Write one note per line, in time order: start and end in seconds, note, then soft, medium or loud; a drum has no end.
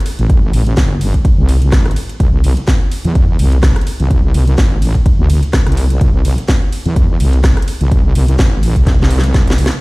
0.00 closed hi-hat medium
0.06 open hi-hat loud
0.06 ride medium
0.19 0.52 A1 loud
0.19 closed hi-hat medium
0.30 kick loud
0.30 closed hi-hat medium
0.53 0.76 A1 loud
0.53 open hi-hat loud
0.53 ride medium
0.67 closed hi-hat soft
0.77 1.12 G1 medium
0.77 kick loud
0.77 snare loud
0.77 closed hi-hat medium
1.01 open hi-hat loud
1.01 ride medium
1.14 kick medium
1.14 closed hi-hat soft
1.25 kick loud
1.25 closed hi-hat medium
1.38 1.71 C2 loud
1.49 open hi-hat loud
1.49 ride medium
1.62 closed hi-hat medium
1.72 1.95 A1 loud
1.72 kick loud
1.72 cross-stick medium
1.72 snare loud
1.72 closed hi-hat medium
1.86 cross-stick medium
1.86 closed hi-hat soft
1.91 closed hi-hat medium
1.96 open hi-hat loud
1.96 ride medium
2.09 closed hi-hat medium
2.20 2.55 C2 loud
2.20 kick loud
2.20 closed hi-hat medium
2.44 open hi-hat loud
2.44 ride medium
2.57 closed hi-hat medium
2.68 kick loud
2.68 snare loud
2.68 closed hi-hat medium
2.92 open hi-hat loud
2.92 ride medium
3.05 3.37 E2 medium
3.05 closed hi-hat soft
3.15 kick loud
3.15 closed hi-hat medium
3.39 3.74 C2 loud
3.39 open hi-hat loud
3.39 ride medium
3.52 closed hi-hat medium
3.63 kick loud
3.63 cross-stick medium
3.63 snare loud
3.63 closed hi-hat medium
3.76 cross-stick medium
3.76 closed hi-hat soft
3.81 closed hi-hat medium
3.87 open hi-hat loud
3.87 ride medium
4.00 4.33 C2 loud
4.00 closed hi-hat medium
4.11 kick loud
4.11 closed hi-hat medium
4.34 4.56 C2 medium
4.34 open hi-hat loud
4.34 ride medium
4.47 closed hi-hat medium
4.58 4.93 A1 medium
4.58 kick loud
4.58 snare loud
4.58 closed hi-hat medium
4.82 open hi-hat loud
4.82 ride medium
4.95 kick medium
4.95 closed hi-hat medium
5.06 kick loud
5.06 closed hi-hat medium
5.19 5.41 D2 loud
5.30 open hi-hat loud
5.30 ride medium
5.43 closed hi-hat medium
5.53 kick loud
5.53 cross-stick medium
5.53 snare loud
5.53 closed hi-hat medium
5.67 5.99 C2 loud
5.67 cross-stick medium
5.67 closed hi-hat soft
5.72 closed hi-hat medium
5.77 open hi-hat loud
5.77 ride medium
5.90 closed hi-hat medium
6.01 6.36 C2 loud
6.01 kick loud
6.01 closed hi-hat medium
6.25 open hi-hat loud
6.25 ride medium
6.38 closed hi-hat medium
6.48 kick loud
6.48 snare loud
6.48 closed hi-hat medium
6.72 open hi-hat loud
6.72 ride medium
6.86 7.18 E2 loud
6.86 closed hi-hat medium
6.96 kick loud
6.96 closed hi-hat medium
7.20 7.55 C2 loud
7.20 open hi-hat loud
7.20 ride medium
7.33 closed hi-hat medium
7.44 kick loud
7.44 cross-stick medium
7.44 snare loud
7.44 closed hi-hat medium
7.57 cross-stick medium
7.57 closed hi-hat medium
7.62 closed hi-hat medium
7.68 open hi-hat loud
7.68 ride medium
7.81 8.14 C2 loud
7.81 closed hi-hat medium
7.92 kick loud
7.92 closed hi-hat medium
8.15 8.37 C2 loud
8.15 open hi-hat loud
8.15 ride medium
8.28 closed hi-hat medium
8.39 8.74 A1 medium
8.39 kick loud
8.39 snare loud
8.39 closed hi-hat medium
8.63 open hi-hat loud
8.63 ride medium
8.76 8.98 C2 loud
8.76 kick medium
8.76 closed hi-hat medium
8.87 kick loud
8.87 snare medium
8.87 closed hi-hat medium
9.00 9.33 C2 loud
9.00 snare medium
9.11 open hi-hat loud
9.11 ride medium
9.19 snare medium
9.24 closed hi-hat medium
9.34 9.69 C2 loud
9.34 kick loud
9.34 snare medium
9.34 closed hi-hat medium
9.47 snare loud
9.47 closed hi-hat medium
9.53 closed hi-hat medium
9.58 open hi-hat loud
9.58 ride medium
9.66 snare loud
9.71 closed hi-hat medium